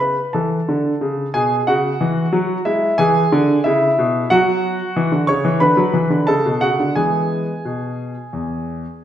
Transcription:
grand piano
Already playing: C#3
0.00 B4 B5
0.33 E3 A4 A5
0.69 D3
1.01 C#3
1.34 B2 G#4 G#5
1.67 C#3 F#4 F#5
2.01 E3
2.33 F#3
2.65 G#3 E4 E5
2.98 E3 G#4 G#5
3.32 D3
3.64 C#3 E4 E5
3.98 B2
4.30 F#3 F#4 F#5
4.96 E3
5.12 D3
5.27 C#3 C#5 C#6
5.45 E3
5.60 D3 B4 B5
5.77 F#3
5.94 E3
6.10 D3
6.27 C#3 A4 A5
6.46 B2
6.61 C#3 F#4 F#5
6.80 D3
6.96 E3 G#3 B3 G#4 G#5
7.65 B2
8.33 E2

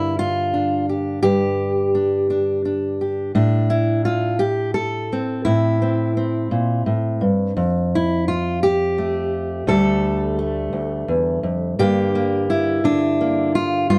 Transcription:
steel-string acoustic guitar
Already playing: G2 D3 A#3 E4
0.19 F4
0.54 D4
0.89 G4
1.23 G2 G4
1.95 D4
2.30 D4
2.65 D4
3.01 G4
3.35 A2 D4
3.70 E4
4.05 F4
4.39 G4
4.74 A4
5.13 C4
5.45 A2 E4
5.82 C4
6.17 C4
6.51 A#2
6.86 A2
7.21 G2
7.57 F2
7.95 E4
8.28 F4
8.63 G4
8.98 A3
9.67 D2 D3 G3 A3 A4
10.39 A3
10.73 D2
11.08 E2
11.43 F2
11.79 G2 D3 A#3 D4 G4
12.15 A#3
12.50 E4
12.84 D3 D4
13.21 A#3
13.55 F4
13.90 G2 F4

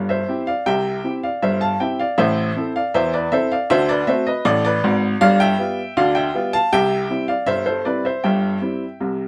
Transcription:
upright piano
Already playing: G1 G2
0.09 C5 E5
0.28 C4 E4 G4
0.47 D5 F5
0.66 C2 C3 E5 G5
1.04 C4 E4 G4
1.23 D5 F5
1.42 G1 G2 C5 E5
1.61 F5 A5
1.80 C4 E4 G4 E5 G5
1.99 D5 F5
2.18 A1 A2 C5 E5
2.56 C4 E4 A4
2.76 D5 F5
2.94 E2 E3 C5 E5
3.14 B4 D5
3.32 C4 E4 A4 C5 E5
3.52 D5 F5
3.70 D2 D3 C5 E5
3.89 B4 D5
4.07 A3 C4 F#4 C5 E5
4.27 B4 D#5
4.45 A1 A2 A4 D5
4.65 B4 D5
4.84 G#1 G#2
5.21 G1 G2 D5 F5
5.40 E5 G5
5.59 G3 B3 F4
5.97 D2 D3 D5 F5
6.15 E5 G5
6.35 G3 B3 F4
6.53 F5 A5
6.72 C2 C3 E5 G5
7.10 G3 C4 E4
7.28 D5 F5
7.46 G1 G2 C5 E5
7.66 A4 C5
7.85 G3 C4 E4 B4 D5
8.05 C5 E5
8.24 G1 G2 E5 G5
8.62 G3 C4 E4
9.01 C2 C3

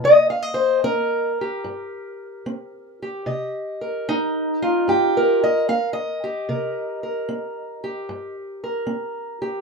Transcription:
steel-string acoustic guitar
Already playing: A#3
0.04 C3 D#5
0.30 F5
0.43 D#5
0.54 C5
0.84 C4 A#4
1.41 G4
1.64 G2
2.46 C4
3.02 G4
3.26 C3 D#5
3.81 A#4
4.09 D#4
4.62 F4
4.88 G2 G4
5.17 A#4
5.44 D#5
5.68 C4 F5
5.93 D#5
6.24 G4
6.49 C3 A#4
7.03 A#4
7.29 C4
7.84 G4
8.09 G2
8.64 A#4
8.87 C4
9.42 G4

